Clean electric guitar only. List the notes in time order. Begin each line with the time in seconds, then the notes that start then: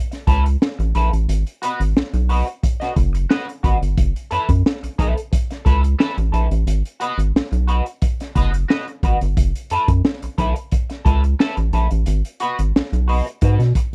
0.11 muted clean electric guitar stroke
0.27 A4 B4 E5
0.45 muted clean electric guitar stroke
0.79 muted clean electric guitar stroke
0.95 A4 B4 E5
1.11 muted clean electric guitar stroke
1.62 F#4 B4 D#5
2.14 muted clean electric guitar stroke
2.29 F#4 B4 D#5
2.47 muted clean electric guitar stroke
2.63 muted clean electric guitar stroke
2.80 F#4 B4 D#5
2.96 muted clean electric guitar stroke
3.13 muted clean electric guitar stroke
3.29 F#4 B4 D#5
3.48 muted clean electric guitar stroke
3.63 F#4 B4 D#5
4.31 A4 B4 E5
4.83 muted clean electric guitar stroke
4.98 A4 B4 E5
5.16 muted clean electric guitar stroke
5.32 muted clean electric guitar stroke
5.51 muted clean electric guitar stroke
5.65 A4 B4 E5
5.83 muted clean electric guitar stroke
5.99 A4 B4 E5
6.18 muted clean electric guitar stroke
6.32 A4 B4 E5
6.52 muted clean electric guitar stroke
7.00 F#4 B4 D#5
7.52 muted clean electric guitar stroke
7.67 F#4 B4 D#5
7.86 muted clean electric guitar stroke
8.02 muted clean electric guitar stroke
8.21 muted clean electric guitar stroke
8.35 F#4 B4 D#5
8.53 muted clean electric guitar stroke
8.68 F#4 B4 D#5
9.04 F#4 B4 D#5
9.71 A4 B4 E5
10.23 muted clean electric guitar stroke
10.38 A4 B4 E5
10.56 muted clean electric guitar stroke
10.72 muted clean electric guitar stroke
10.90 muted clean electric guitar stroke
11.05 A4 B4 E5
11.23 muted clean electric guitar stroke
11.39 A4 B4 E5
11.58 muted clean electric guitar stroke
11.73 A4 B4 E5
11.91 muted clean electric guitar stroke
12.40 F#4 B4 D#5
12.93 muted clean electric guitar stroke
13.08 F#4 B4 D#5
13.28 muted clean electric guitar stroke
13.43 F#4 B4 D#5
13.76 muted clean electric guitar stroke